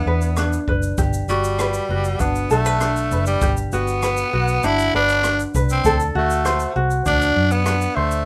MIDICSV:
0, 0, Header, 1, 5, 480
1, 0, Start_track
1, 0, Key_signature, 1, "major"
1, 0, Tempo, 607287
1, 779, Time_signature, 4, 2, 24, 8
1, 6522, End_track
2, 0, Start_track
2, 0, Title_t, "Ukulele"
2, 0, Program_c, 0, 24
2, 0, Note_on_c, 0, 62, 63
2, 0, Note_on_c, 0, 64, 46
2, 0, Note_on_c, 0, 67, 61
2, 57, Note_on_c, 0, 71, 54
2, 298, Note_off_c, 0, 62, 0
2, 301, Note_on_c, 0, 62, 57
2, 539, Note_off_c, 0, 64, 0
2, 542, Note_off_c, 0, 71, 0
2, 542, Note_on_c, 0, 71, 47
2, 774, Note_off_c, 0, 67, 0
2, 777, Note_on_c, 0, 67, 65
2, 1023, Note_off_c, 0, 62, 0
2, 1026, Note_on_c, 0, 66, 57
2, 1263, Note_off_c, 0, 71, 0
2, 1263, Note_on_c, 0, 71, 59
2, 1505, Note_off_c, 0, 66, 0
2, 1505, Note_on_c, 0, 66, 50
2, 1740, Note_on_c, 0, 62, 55
2, 1977, Note_off_c, 0, 71, 0
2, 1981, Note_on_c, 0, 69, 59
2, 2101, Note_off_c, 0, 69, 0
2, 2101, Note_on_c, 0, 71, 49
2, 2218, Note_off_c, 0, 62, 0
2, 2221, Note_on_c, 0, 62, 55
2, 2457, Note_off_c, 0, 71, 0
2, 2467, Note_on_c, 0, 71, 47
2, 2696, Note_off_c, 0, 67, 0
2, 2706, Note_on_c, 0, 67, 64
2, 2944, Note_off_c, 0, 66, 0
2, 2947, Note_on_c, 0, 66, 59
2, 3174, Note_off_c, 0, 71, 0
2, 3184, Note_on_c, 0, 71, 60
2, 3420, Note_off_c, 0, 66, 0
2, 3423, Note_on_c, 0, 66, 50
2, 3663, Note_off_c, 0, 62, 0
2, 3666, Note_on_c, 0, 62, 63
2, 3899, Note_off_c, 0, 71, 0
2, 3908, Note_on_c, 0, 71, 57
2, 4145, Note_off_c, 0, 62, 0
2, 4148, Note_on_c, 0, 62, 55
2, 4379, Note_off_c, 0, 71, 0
2, 4389, Note_on_c, 0, 71, 52
2, 4622, Note_off_c, 0, 67, 0
2, 4624, Note_off_c, 0, 71, 0
2, 4627, Note_on_c, 0, 69, 73
2, 4860, Note_off_c, 0, 66, 0
2, 4863, Note_on_c, 0, 66, 59
2, 5103, Note_on_c, 0, 72, 65
2, 5126, Note_off_c, 0, 62, 0
2, 5332, Note_off_c, 0, 66, 0
2, 5342, Note_on_c, 0, 66, 56
2, 5578, Note_on_c, 0, 62, 64
2, 5819, Note_off_c, 0, 72, 0
2, 6053, Note_off_c, 0, 62, 0
2, 6056, Note_on_c, 0, 62, 61
2, 6295, Note_on_c, 0, 72, 53
2, 6522, Note_off_c, 0, 62, 0
2, 6522, Note_off_c, 0, 66, 0
2, 6522, Note_off_c, 0, 69, 0
2, 6522, Note_off_c, 0, 72, 0
2, 6522, End_track
3, 0, Start_track
3, 0, Title_t, "Tenor saxophone"
3, 0, Program_c, 1, 66
3, 0, Note_on_c, 1, 59, 86
3, 509, Note_off_c, 1, 59, 0
3, 1018, Note_on_c, 1, 55, 72
3, 1744, Note_on_c, 1, 59, 79
3, 1756, Note_off_c, 1, 55, 0
3, 1982, Note_off_c, 1, 59, 0
3, 1992, Note_on_c, 1, 57, 80
3, 2555, Note_off_c, 1, 57, 0
3, 2585, Note_on_c, 1, 55, 74
3, 2806, Note_off_c, 1, 55, 0
3, 2954, Note_on_c, 1, 59, 86
3, 3675, Note_on_c, 1, 64, 92
3, 3686, Note_off_c, 1, 59, 0
3, 3907, Note_off_c, 1, 64, 0
3, 3917, Note_on_c, 1, 62, 94
3, 4268, Note_off_c, 1, 62, 0
3, 4517, Note_on_c, 1, 60, 77
3, 4732, Note_off_c, 1, 60, 0
3, 4880, Note_on_c, 1, 57, 80
3, 5317, Note_off_c, 1, 57, 0
3, 5589, Note_on_c, 1, 62, 91
3, 5938, Note_on_c, 1, 59, 92
3, 5950, Note_off_c, 1, 62, 0
3, 6289, Note_on_c, 1, 57, 81
3, 6300, Note_off_c, 1, 59, 0
3, 6522, Note_off_c, 1, 57, 0
3, 6522, End_track
4, 0, Start_track
4, 0, Title_t, "Fingered electric bass"
4, 0, Program_c, 2, 33
4, 47, Note_on_c, 2, 40, 78
4, 445, Note_off_c, 2, 40, 0
4, 536, Note_on_c, 2, 30, 73
4, 734, Note_off_c, 2, 30, 0
4, 773, Note_on_c, 2, 31, 95
4, 972, Note_off_c, 2, 31, 0
4, 1011, Note_on_c, 2, 31, 78
4, 1409, Note_off_c, 2, 31, 0
4, 1495, Note_on_c, 2, 30, 70
4, 1694, Note_off_c, 2, 30, 0
4, 1738, Note_on_c, 2, 31, 80
4, 1936, Note_off_c, 2, 31, 0
4, 1980, Note_on_c, 2, 35, 76
4, 2460, Note_on_c, 2, 30, 79
4, 2472, Note_off_c, 2, 35, 0
4, 2657, Note_off_c, 2, 30, 0
4, 2700, Note_on_c, 2, 31, 91
4, 2897, Note_off_c, 2, 31, 0
4, 2944, Note_on_c, 2, 31, 80
4, 3336, Note_off_c, 2, 31, 0
4, 3426, Note_on_c, 2, 35, 71
4, 3620, Note_off_c, 2, 35, 0
4, 3663, Note_on_c, 2, 31, 78
4, 3859, Note_off_c, 2, 31, 0
4, 3906, Note_on_c, 2, 31, 80
4, 4297, Note_off_c, 2, 31, 0
4, 4384, Note_on_c, 2, 36, 78
4, 4579, Note_off_c, 2, 36, 0
4, 4621, Note_on_c, 2, 38, 89
4, 4817, Note_off_c, 2, 38, 0
4, 4862, Note_on_c, 2, 38, 78
4, 5254, Note_off_c, 2, 38, 0
4, 5341, Note_on_c, 2, 36, 71
4, 5536, Note_off_c, 2, 36, 0
4, 5581, Note_on_c, 2, 38, 80
4, 5776, Note_off_c, 2, 38, 0
4, 5820, Note_on_c, 2, 42, 81
4, 6211, Note_off_c, 2, 42, 0
4, 6298, Note_on_c, 2, 38, 77
4, 6493, Note_off_c, 2, 38, 0
4, 6522, End_track
5, 0, Start_track
5, 0, Title_t, "Drums"
5, 171, Note_on_c, 9, 82, 42
5, 250, Note_off_c, 9, 82, 0
5, 290, Note_on_c, 9, 37, 87
5, 290, Note_on_c, 9, 82, 60
5, 369, Note_off_c, 9, 37, 0
5, 369, Note_off_c, 9, 82, 0
5, 416, Note_on_c, 9, 82, 48
5, 495, Note_off_c, 9, 82, 0
5, 535, Note_on_c, 9, 36, 81
5, 614, Note_off_c, 9, 36, 0
5, 653, Note_on_c, 9, 82, 48
5, 732, Note_off_c, 9, 82, 0
5, 773, Note_on_c, 9, 82, 62
5, 774, Note_on_c, 9, 36, 100
5, 852, Note_off_c, 9, 82, 0
5, 853, Note_off_c, 9, 36, 0
5, 896, Note_on_c, 9, 82, 47
5, 975, Note_off_c, 9, 82, 0
5, 1018, Note_on_c, 9, 82, 43
5, 1097, Note_off_c, 9, 82, 0
5, 1138, Note_on_c, 9, 82, 51
5, 1217, Note_off_c, 9, 82, 0
5, 1256, Note_on_c, 9, 37, 88
5, 1257, Note_on_c, 9, 82, 58
5, 1335, Note_off_c, 9, 37, 0
5, 1336, Note_off_c, 9, 82, 0
5, 1372, Note_on_c, 9, 82, 44
5, 1451, Note_off_c, 9, 82, 0
5, 1616, Note_on_c, 9, 82, 43
5, 1695, Note_off_c, 9, 82, 0
5, 1736, Note_on_c, 9, 82, 55
5, 1740, Note_on_c, 9, 36, 82
5, 1815, Note_off_c, 9, 82, 0
5, 1819, Note_off_c, 9, 36, 0
5, 1860, Note_on_c, 9, 82, 42
5, 1939, Note_off_c, 9, 82, 0
5, 1979, Note_on_c, 9, 82, 47
5, 2058, Note_off_c, 9, 82, 0
5, 2100, Note_on_c, 9, 82, 42
5, 2179, Note_off_c, 9, 82, 0
5, 2218, Note_on_c, 9, 37, 81
5, 2219, Note_on_c, 9, 82, 60
5, 2297, Note_off_c, 9, 37, 0
5, 2298, Note_off_c, 9, 82, 0
5, 2343, Note_on_c, 9, 82, 45
5, 2422, Note_off_c, 9, 82, 0
5, 2461, Note_on_c, 9, 82, 49
5, 2540, Note_off_c, 9, 82, 0
5, 2577, Note_on_c, 9, 82, 50
5, 2656, Note_off_c, 9, 82, 0
5, 2698, Note_on_c, 9, 82, 61
5, 2700, Note_on_c, 9, 36, 106
5, 2777, Note_off_c, 9, 82, 0
5, 2779, Note_off_c, 9, 36, 0
5, 2821, Note_on_c, 9, 82, 49
5, 2900, Note_off_c, 9, 82, 0
5, 2943, Note_on_c, 9, 82, 45
5, 3022, Note_off_c, 9, 82, 0
5, 3063, Note_on_c, 9, 82, 49
5, 3142, Note_off_c, 9, 82, 0
5, 3181, Note_on_c, 9, 37, 82
5, 3181, Note_on_c, 9, 82, 57
5, 3260, Note_off_c, 9, 37, 0
5, 3260, Note_off_c, 9, 82, 0
5, 3295, Note_on_c, 9, 82, 50
5, 3374, Note_off_c, 9, 82, 0
5, 3540, Note_on_c, 9, 82, 45
5, 3619, Note_off_c, 9, 82, 0
5, 3660, Note_on_c, 9, 82, 55
5, 3739, Note_off_c, 9, 82, 0
5, 3784, Note_on_c, 9, 82, 43
5, 3863, Note_off_c, 9, 82, 0
5, 4022, Note_on_c, 9, 82, 45
5, 4101, Note_off_c, 9, 82, 0
5, 4140, Note_on_c, 9, 37, 80
5, 4141, Note_on_c, 9, 82, 62
5, 4219, Note_off_c, 9, 37, 0
5, 4220, Note_off_c, 9, 82, 0
5, 4266, Note_on_c, 9, 82, 46
5, 4345, Note_off_c, 9, 82, 0
5, 4384, Note_on_c, 9, 36, 79
5, 4385, Note_on_c, 9, 82, 57
5, 4463, Note_off_c, 9, 36, 0
5, 4464, Note_off_c, 9, 82, 0
5, 4500, Note_on_c, 9, 82, 52
5, 4579, Note_off_c, 9, 82, 0
5, 4619, Note_on_c, 9, 82, 61
5, 4622, Note_on_c, 9, 36, 94
5, 4698, Note_off_c, 9, 82, 0
5, 4701, Note_off_c, 9, 36, 0
5, 4742, Note_on_c, 9, 82, 48
5, 4821, Note_off_c, 9, 82, 0
5, 4982, Note_on_c, 9, 82, 52
5, 5061, Note_off_c, 9, 82, 0
5, 5099, Note_on_c, 9, 37, 88
5, 5100, Note_on_c, 9, 82, 57
5, 5178, Note_off_c, 9, 37, 0
5, 5179, Note_off_c, 9, 82, 0
5, 5213, Note_on_c, 9, 82, 48
5, 5292, Note_off_c, 9, 82, 0
5, 5458, Note_on_c, 9, 82, 41
5, 5537, Note_off_c, 9, 82, 0
5, 5578, Note_on_c, 9, 82, 54
5, 5582, Note_on_c, 9, 36, 78
5, 5657, Note_off_c, 9, 82, 0
5, 5661, Note_off_c, 9, 36, 0
5, 5701, Note_on_c, 9, 82, 43
5, 5780, Note_off_c, 9, 82, 0
5, 5936, Note_on_c, 9, 82, 46
5, 6015, Note_off_c, 9, 82, 0
5, 6053, Note_on_c, 9, 37, 84
5, 6053, Note_on_c, 9, 82, 63
5, 6132, Note_off_c, 9, 37, 0
5, 6132, Note_off_c, 9, 82, 0
5, 6176, Note_on_c, 9, 82, 50
5, 6255, Note_off_c, 9, 82, 0
5, 6412, Note_on_c, 9, 82, 51
5, 6491, Note_off_c, 9, 82, 0
5, 6522, End_track
0, 0, End_of_file